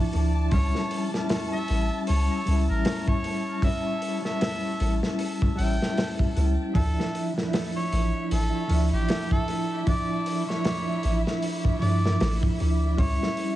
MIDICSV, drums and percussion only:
0, 0, Header, 1, 2, 480
1, 0, Start_track
1, 0, Key_signature, -1, "minor"
1, 0, Tempo, 779221
1, 323, Time_signature, 4, 2, 24, 8
1, 8351, End_track
2, 0, Start_track
2, 0, Title_t, "Drums"
2, 80, Note_on_c, 9, 46, 70
2, 142, Note_off_c, 9, 46, 0
2, 316, Note_on_c, 9, 46, 90
2, 319, Note_on_c, 9, 36, 97
2, 378, Note_off_c, 9, 46, 0
2, 380, Note_off_c, 9, 36, 0
2, 462, Note_on_c, 9, 38, 40
2, 524, Note_off_c, 9, 38, 0
2, 559, Note_on_c, 9, 46, 70
2, 621, Note_off_c, 9, 46, 0
2, 703, Note_on_c, 9, 38, 52
2, 765, Note_off_c, 9, 38, 0
2, 797, Note_on_c, 9, 46, 92
2, 802, Note_on_c, 9, 38, 125
2, 859, Note_off_c, 9, 46, 0
2, 863, Note_off_c, 9, 38, 0
2, 1035, Note_on_c, 9, 46, 75
2, 1096, Note_off_c, 9, 46, 0
2, 1275, Note_on_c, 9, 46, 92
2, 1337, Note_off_c, 9, 46, 0
2, 1520, Note_on_c, 9, 46, 65
2, 1582, Note_off_c, 9, 46, 0
2, 1755, Note_on_c, 9, 46, 94
2, 1761, Note_on_c, 9, 38, 123
2, 1816, Note_off_c, 9, 46, 0
2, 1822, Note_off_c, 9, 38, 0
2, 1895, Note_on_c, 9, 36, 104
2, 1956, Note_off_c, 9, 36, 0
2, 1996, Note_on_c, 9, 46, 74
2, 2058, Note_off_c, 9, 46, 0
2, 2231, Note_on_c, 9, 36, 105
2, 2235, Note_on_c, 9, 46, 95
2, 2293, Note_off_c, 9, 36, 0
2, 2296, Note_off_c, 9, 46, 0
2, 2475, Note_on_c, 9, 46, 66
2, 2537, Note_off_c, 9, 46, 0
2, 2618, Note_on_c, 9, 38, 38
2, 2680, Note_off_c, 9, 38, 0
2, 2718, Note_on_c, 9, 46, 100
2, 2723, Note_on_c, 9, 38, 114
2, 2779, Note_off_c, 9, 46, 0
2, 2785, Note_off_c, 9, 38, 0
2, 2958, Note_on_c, 9, 46, 72
2, 3019, Note_off_c, 9, 46, 0
2, 3099, Note_on_c, 9, 38, 52
2, 3161, Note_off_c, 9, 38, 0
2, 3195, Note_on_c, 9, 46, 94
2, 3257, Note_off_c, 9, 46, 0
2, 3338, Note_on_c, 9, 36, 93
2, 3400, Note_off_c, 9, 36, 0
2, 3440, Note_on_c, 9, 46, 76
2, 3502, Note_off_c, 9, 46, 0
2, 3587, Note_on_c, 9, 38, 57
2, 3649, Note_off_c, 9, 38, 0
2, 3680, Note_on_c, 9, 46, 77
2, 3685, Note_on_c, 9, 38, 123
2, 3741, Note_off_c, 9, 46, 0
2, 3747, Note_off_c, 9, 38, 0
2, 3815, Note_on_c, 9, 36, 96
2, 3877, Note_off_c, 9, 36, 0
2, 3921, Note_on_c, 9, 46, 65
2, 3983, Note_off_c, 9, 46, 0
2, 4158, Note_on_c, 9, 36, 117
2, 4161, Note_on_c, 9, 46, 83
2, 4220, Note_off_c, 9, 36, 0
2, 4223, Note_off_c, 9, 46, 0
2, 4311, Note_on_c, 9, 38, 49
2, 4373, Note_off_c, 9, 38, 0
2, 4403, Note_on_c, 9, 46, 65
2, 4465, Note_off_c, 9, 46, 0
2, 4544, Note_on_c, 9, 38, 51
2, 4606, Note_off_c, 9, 38, 0
2, 4640, Note_on_c, 9, 46, 90
2, 4644, Note_on_c, 9, 38, 127
2, 4701, Note_off_c, 9, 46, 0
2, 4705, Note_off_c, 9, 38, 0
2, 4881, Note_on_c, 9, 46, 71
2, 4943, Note_off_c, 9, 46, 0
2, 5120, Note_on_c, 9, 46, 86
2, 5182, Note_off_c, 9, 46, 0
2, 5356, Note_on_c, 9, 46, 76
2, 5417, Note_off_c, 9, 46, 0
2, 5596, Note_on_c, 9, 46, 89
2, 5606, Note_on_c, 9, 38, 126
2, 5658, Note_off_c, 9, 46, 0
2, 5667, Note_off_c, 9, 38, 0
2, 5736, Note_on_c, 9, 36, 97
2, 5797, Note_off_c, 9, 36, 0
2, 5839, Note_on_c, 9, 46, 73
2, 5900, Note_off_c, 9, 46, 0
2, 6078, Note_on_c, 9, 46, 90
2, 6079, Note_on_c, 9, 36, 117
2, 6140, Note_off_c, 9, 46, 0
2, 6141, Note_off_c, 9, 36, 0
2, 6321, Note_on_c, 9, 46, 76
2, 6382, Note_off_c, 9, 46, 0
2, 6468, Note_on_c, 9, 38, 38
2, 6530, Note_off_c, 9, 38, 0
2, 6557, Note_on_c, 9, 46, 86
2, 6562, Note_on_c, 9, 38, 111
2, 6619, Note_off_c, 9, 46, 0
2, 6624, Note_off_c, 9, 38, 0
2, 6794, Note_on_c, 9, 46, 66
2, 6856, Note_off_c, 9, 46, 0
2, 6943, Note_on_c, 9, 38, 48
2, 7005, Note_off_c, 9, 38, 0
2, 7037, Note_on_c, 9, 46, 92
2, 7098, Note_off_c, 9, 46, 0
2, 7175, Note_on_c, 9, 36, 87
2, 7237, Note_off_c, 9, 36, 0
2, 7281, Note_on_c, 9, 46, 76
2, 7342, Note_off_c, 9, 46, 0
2, 7426, Note_on_c, 9, 38, 61
2, 7488, Note_off_c, 9, 38, 0
2, 7518, Note_on_c, 9, 46, 86
2, 7522, Note_on_c, 9, 38, 127
2, 7579, Note_off_c, 9, 46, 0
2, 7584, Note_off_c, 9, 38, 0
2, 7656, Note_on_c, 9, 36, 101
2, 7718, Note_off_c, 9, 36, 0
2, 7761, Note_on_c, 9, 46, 69
2, 7823, Note_off_c, 9, 46, 0
2, 7998, Note_on_c, 9, 36, 111
2, 7999, Note_on_c, 9, 46, 84
2, 8060, Note_off_c, 9, 36, 0
2, 8061, Note_off_c, 9, 46, 0
2, 8150, Note_on_c, 9, 38, 50
2, 8212, Note_off_c, 9, 38, 0
2, 8236, Note_on_c, 9, 46, 72
2, 8297, Note_off_c, 9, 46, 0
2, 8351, End_track
0, 0, End_of_file